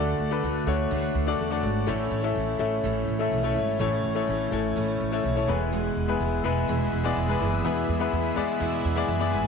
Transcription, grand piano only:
Already playing: D3 A3 D4 F#4 A4 D5 E5
0.31 A3 D4 F#4 A4 B4
0.67 A3 D4 F#4 A4 C#5
1.26 A3 D4 F#4 A4 D5
1.50 A3 D4 F#4 A4 D5
1.86 A2 A3 C#4 E4 A4 C#5
2.23 A3 C#4 E4 A4 E5
2.59 A3 C#4 E4 A4 E5
3.19 A3 C#4 E4 A4 E5
3.43 A3 C#4 E4 A4 C#5
3.79 A2 A3 C#4 E4 A4 C#5
4.15 A3 C#4 E4 A4 C#5
4.51 A3 C#4 E4 A4 C#5
5.11 A3 C#4 E4 A4 C#5
5.35 A3 C#4 E4 A4 C#5
5.48 E3 G#3 B3 E4 G#4 B4
6.08 G#3 B3 E4 G#4 B4
6.44 G#3 B3 E4 G#4 B4
7.04 G#3 B3 E4 G#4 D5
7.28 G#3 B3 E4 G#4 B4
7.41 E3
7.63 G#3 B3 E4 G#4 B4
7.99 G#3 B3 E4 G#4 B4
8.36 G#3 B3 E4 G#4 D5
8.96 G#3 B3 E4 G#4 D5
9.08 E5
9.19 G#3 B3 E4 G#4 D5
9.32 G#5

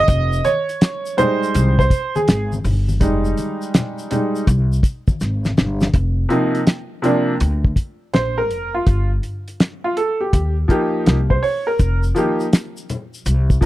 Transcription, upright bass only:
0.08 F1
1.55 C2
2.28 G#1
2.64 G1
3.01 F1
4.47 C2
5.21 G#1
5.57 G1
5.94 F1
7.41 D2
8.14 A#1
8.50 F1
8.87 G1
10.33 D#2
11.06 C2
11.80 F1
13.26 C2

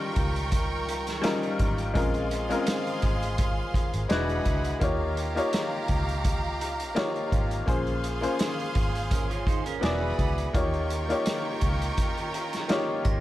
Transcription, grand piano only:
Already playing: G3 C#4 D#4 F4 A#4
1.22 G3 C#4 D#4 F4 A#4
1.94 G#3 C4 C#4 F4 A#4
2.49 G#3 C4 C#4 F4 A#4
4.09 G#3 D4 E4 F#4 B4
4.80 A#3 D#4 F4 G4 C#5
5.35 A#3 D#4 F4 G4 C#5
6.95 A#3 D#4 F4 G4 C#5
7.66 A#3 C#4 F4 G#4 C5
8.21 A#3 C#4 F4 G#4 C5
9.81 B3 E4 F#4 G#4 D5
10.53 A#3 D#4 F4 G4 C#5
11.09 A#3 D#4 F4 G4 C#5
12.68 A#3 D#4 F4 G4 C#5

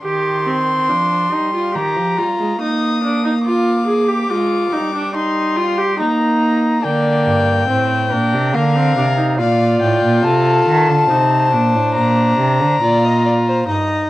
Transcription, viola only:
0.04 G4
0.47 C4
0.89 D4
1.32 D#4
1.54 F4
1.75 G4
2.18 F4
2.61 D#4
3.03 D4
3.25 D#4
3.45 F4
3.87 G#4
4.08 G4
4.30 F4
4.73 D#4
4.95 D4
5.15 D#4
5.56 F4
5.78 G4
5.99 D#4
6.84 A#3
7.68 C4
8.11 D4
8.54 A#3
8.75 C4
8.97 D4
9.17 D#4
9.39 F4
11.10 D#4
11.53 D4
12.83 F4
13.69 D#4

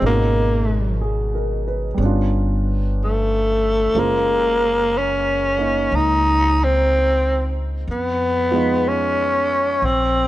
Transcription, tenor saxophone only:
0.06 A#3
3.03 A3
3.99 A#3
4.97 C#4
5.95 D#4
6.64 C4
7.91 B3
8.88 C#4
9.85 C4

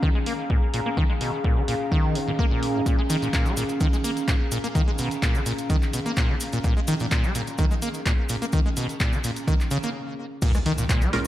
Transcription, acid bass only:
0.03 D#3
0.15 G#3
0.26 A#3
0.50 A#2
0.74 A#2
0.86 A#3
0.97 D#3
1.10 G#3
1.21 B2
1.44 A#2
1.57 D#3
1.68 A#2
1.92 D#3
2.15 A#2
2.28 A#2
2.39 A#3
2.51 A#2
2.75 G#2
2.86 A#2
2.99 G#3
3.10 D#3
3.22 A#2
3.33 A#2
3.46 G#3
3.57 A#2
3.80 D#3
3.93 G#3
4.04 A#3
4.28 A#2
4.51 A#2
4.64 A#3
4.75 D#3
4.88 G#3
4.99 B2
5.22 A#2
5.35 D#3
5.46 A#2
5.70 D#3
5.93 B2
6.06 A#3
6.17 A#2
6.29 D#3
6.53 A#2
6.64 A#2
6.77 G#3
6.88 D#3
7.00 A#2
7.11 A#2
7.24 G#3
7.35 A#2
7.59 D#3
7.71 G#3
7.82 A#3
8.06 A#2
8.29 A#2
8.42 A#3
8.53 D#3
8.66 G#3
8.77 B2
9.00 A#2
9.13 D#3
9.24 A#2
9.48 D#3
9.71 C#3
9.84 A#3
10.42 A#2
10.55 G#3
10.66 D#3
10.78 A#2
10.89 A#2
11.02 G#3
11.13 A#2

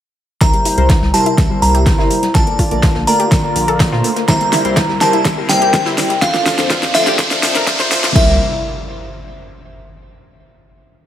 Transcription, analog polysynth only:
0.41 G3 E4 A#4 C5
0.78 G3 E4 A#4 C5
1.14 G3 E4 A#4 C5
1.50 G3 E4 A#4 C5
1.99 G3 E4 A#4 C5
2.35 F4 A4 A#4 D5
2.71 A3 F4 A#4 D5
3.07 A3 F4 A#4 D5
3.44 A#3 F4 A#4 D5
3.92 A3 F4 A#4 C5
4.29 G3 E4 A#4 C5
4.65 G3 E4 A#4 C5
5.01 G3 E4 A#4 C5
5.37 G3 E4 A#4 C5
5.86 G3 E4 A#4 C5
6.22 F3 D4 A4 C5
6.58 F3 D4 A4 C5
6.95 F3 D4 A4 C5
7.31 F3 D4 A4 C5
7.79 F3 D4 A4 C5
8.16 G3 E4 A#4 C5

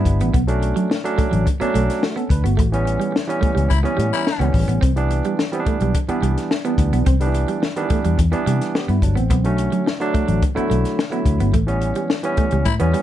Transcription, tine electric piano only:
Already playing: G3 B3 D4 E4
0.47 F#3 A3 C#4 D4
1.04 F#3 A3 C#4 D4
1.60 F#3 A3 C#4 D4
2.03 A3 F#4
2.17 C#4 A4
2.31 D4 B4
2.45 A3 F#4
2.72 E3 G3 B3 C#4
3.27 E3 G3 B3 C#4
3.84 E3 G3 B3 C#4
4.39 E3 G3 B3 C#4
4.96 E3 G3 B3 D4
5.52 E3 G3 B3 C4
5.60 D4
6.08 E3 G3 B3 D4
6.65 E3 G3 B3 D4
7.20 D3 G3 B3 D4
7.27 E3
7.76 D#3 G3 B3 D4
7.82 E3
8.32 E3 G3 B3 D4
8.75 B3 G4
8.89 G3 E4
9.03 F#3 D4
9.17 E3 C4
9.44 D3 F#3 A3 C#4
10.00 D3 F#3 A3 D4
10.55 D3 F#3 A3 E4
11.10 D3 F#3 A3 E4
11.67 E3 G3 B3 C#4
12.23 E3 G3 B3 C#4
12.79 E3 G3 B3 C#4

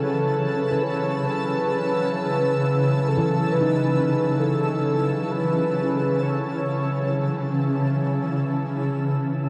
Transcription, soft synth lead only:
Already playing: A4
0.83 C#5
1.26 B4
3.08 A4
3.52 B4
4.39 A4
5.31 B4
6.22 C#5

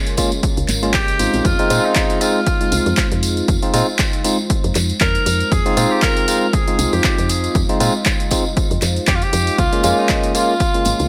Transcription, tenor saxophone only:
0.94 G4
1.45 F4
1.85 D#4
2.21 F4
5.01 A#4
5.52 G#4
5.91 G4
6.02 A#4
6.53 G#4
6.93 G4
7.30 G#4
9.08 G4
9.15 F4
9.23 G4
9.58 F4
9.98 D#4
10.35 F4

